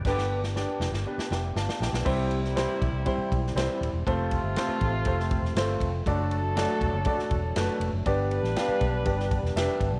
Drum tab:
CC |x---------------|x---------------|----------------|----------------|
RD |----------------|--x-x-x-x-x-x-x-|x-x-x-x-x-x-x-x-|x-x-x-x-x-x-x-x-|
SD |oo-oo-oo-oo-oooo|---oo------oo---|----o----o-oo---|----o----o--o---|
BD |o---------------|o-----o-o-o-----|o-o---o-o-o---o-|o-----o-o-o-----|

CC |----------------|
RD |x-x-x-x-x-x-x-x-|
SD |---oo----o-oo---|
BD |o-----o-o-o---o-|